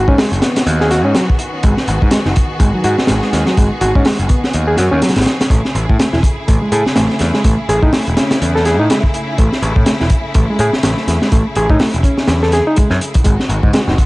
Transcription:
Already playing: string section D#3 B3 F#4 G#4
0.08 picked electric bass G#2, reed electric piano C#4, kick
0.18 reed electric piano G#3, snare, open hi-hat
0.32 picked electric bass F#1, closed hi-hat
0.42 reed electric piano B3, snare, closed hi-hat
0.56 snare, closed hi-hat
0.67 picked electric bass D#2, closed hi-hat
0.80 reed electric piano G#4, snare
0.91 reed electric piano F#4, snare, closed hi-hat
1.05 picked electric bass G#2, reed electric piano C#4
1.15 reed electric piano F#3, snare, closed hi-hat
1.30 kick
1.39 closed hi-hat
1.63 picked electric bass G#1, reed electric piano G#3, kick, closed hi-hat
1.77 snare
1.88 picked electric bass G#1, closed hi-hat
2.02 picked electric bass G#2, kick
2.11 reed electric piano G#3, snare, closed hi-hat
2.25 picked electric bass F#1, reed electric piano D#4, snare
2.36 kick, closed hi-hat
2.60 picked electric bass G#1, reed electric piano G#3, kick, closed hi-hat
2.74 reed electric piano F#3
2.84 picked electric bass G#2, reed electric piano F#4, closed hi-hat
2.98 muted picked electric bass stroke, snare
3.07 picked electric bass G#1, reed electric piano G#3, snare, closed hi-hat
3.22 snare
3.33 picked electric bass D#2, snare, closed hi-hat
3.46 reed electric piano F#3, snare
3.57 picked electric bass G#1, reed electric piano G#3, kick, closed hi-hat
3.81 picked electric bass G#1, reed electric piano F#4, closed hi-hat
3.95 picked electric bass G#2, reed electric piano C#4, kick
4.05 reed electric piano G#3, snare, open hi-hat
4.19 picked electric bass F#1, closed hi-hat
4.29 reed electric piano B3, kick, closed hi-hat
4.44 snare
4.53 picked electric bass D#2, closed hi-hat
4.67 reed electric piano G#4
4.77 picked electric bass F#2, reed electric piano F#4, snare, closed hi-hat
4.91 picked electric bass D#2, reed electric piano C#4
5.02 reed electric piano F#3, snare, closed hi-hat
5.09 snare, closed hi-hat
5.16 picked electric bass G#1, snare, closed hi-hat
5.21 snare, closed hi-hat
5.25 snare, closed hi-hat
5.41 snare, closed hi-hat
5.50 picked electric bass A1, string section C#3 A3 E4, reed electric piano A3, kick, closed hi-hat
5.65 snare
5.75 picked electric bass A1, closed hi-hat
5.89 picked electric bass A2, kick
5.99 reed electric piano A3, snare, closed hi-hat
6.13 picked electric bass E1, reed electric piano E4, snare
6.23 kick, closed hi-hat
6.48 picked electric bass A1, reed electric piano A3, kick, closed hi-hat
6.62 reed electric piano G#3
6.72 picked electric bass A2, reed electric piano G#4, closed hi-hat
6.86 muted picked electric bass stroke, snare
6.96 picked electric bass A1, reed electric piano A3, snare, closed hi-hat
7.10 snare
7.19 picked electric bass E2, snare, closed hi-hat
7.34 reed electric piano G#3, snare
7.44 picked electric bass A1, reed electric piano A3, kick, closed hi-hat
7.69 picked electric bass A1, reed electric piano G#4, closed hi-hat
7.83 picked electric bass A2, reed electric piano D#4, kick
7.93 reed electric piano A3, snare, open hi-hat
8.07 picked electric bass E1, closed hi-hat
8.17 reed electric piano C#4, snare, closed hi-hat
8.31 snare, closed hi-hat
8.42 picked electric bass E2, closed hi-hat
8.55 reed electric piano A4, snare
8.65 reed electric piano G#4, snare, closed hi-hat
8.80 picked electric bass A2, reed electric piano D#4
8.90 reed electric piano G#3, snare, closed hi-hat
9.03 kick
9.14 closed hi-hat
9.38 picked electric bass A1, reed electric piano A3, kick, closed hi-hat
9.52 snare
9.62 picked electric bass A1, closed hi-hat
9.76 picked electric bass A2, kick
9.86 reed electric piano A3, snare, closed hi-hat
10.00 picked electric bass E1, reed electric piano E4, snare
10.10 kick, closed hi-hat
10.34 picked electric bass A1, reed electric piano A3, kick, closed hi-hat
10.50 reed electric piano G#3
10.59 picked electric bass A2, reed electric piano G#4, closed hi-hat
10.73 muted picked electric bass stroke, snare
10.83 picked electric bass A1, reed electric piano A3, snare, closed hi-hat
10.97 snare
11.07 picked electric bass E2, snare, closed hi-hat
11.22 reed electric piano G#3, snare
11.32 picked electric bass A1, reed electric piano A3, kick, closed hi-hat
11.55 picked electric bass A1, reed electric piano G#4, closed hi-hat
11.70 picked electric bass A2, reed electric piano D#4, kick
11.79 reed electric piano A3, snare, open hi-hat
11.94 picked electric bass E1, closed hi-hat
12.03 reed electric piano C#4, kick, closed hi-hat
12.17 snare
12.27 picked electric bass E2, snare, closed hi-hat
12.43 reed electric piano A4, snare
12.52 reed electric piano G#4, snare, closed hi-hat
12.67 reed electric piano D#4
12.76 reed electric piano G#3, kick, closed hi-hat
12.90 picked electric bass F#2, snare
13.01 closed hi-hat
13.14 kick, closed hi-hat
13.24 picked electric bass G#1, string section D#3 G#3 B3 F#4, reed electric piano G#3, kick, closed hi-hat
13.40 snare
13.49 picked electric bass G#1, closed hi-hat
13.63 picked electric bass G#2, kick, high conga
13.73 reed electric piano G#3, snare, closed hi-hat
13.88 picked electric bass F#1, reed electric piano D#4, snare, low conga
13.98 kick, closed hi-hat

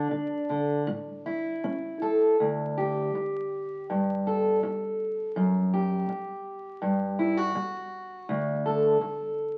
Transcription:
Already playing: steel-string acoustic guitar D4
0.11 steel-string acoustic guitar D3
0.50 steel-string acoustic guitar D3
0.87 steel-string acoustic guitar A2
1.26 steel-string acoustic guitar E4
1.64 steel-string acoustic guitar C#4
2.02 steel-string acoustic guitar A4
2.40 steel-string acoustic guitar D2
2.78 steel-string acoustic guitar G4
3.15 muted steel-string acoustic guitar stroke
3.90 steel-string acoustic guitar G2
4.27 steel-string acoustic guitar A4
4.63 muted steel-string acoustic guitar stroke
5.36 steel-string acoustic guitar F#2
5.74 steel-string acoustic guitar G4
6.09 muted steel-string acoustic guitar stroke
6.82 steel-string acoustic guitar G2
7.19 steel-string acoustic guitar E4
7.37 steel-string acoustic guitar F#4
7.55 muted steel-string acoustic guitar stroke
8.29 steel-string acoustic guitar D2
8.66 steel-string acoustic guitar A4
9.01 muted steel-string acoustic guitar stroke

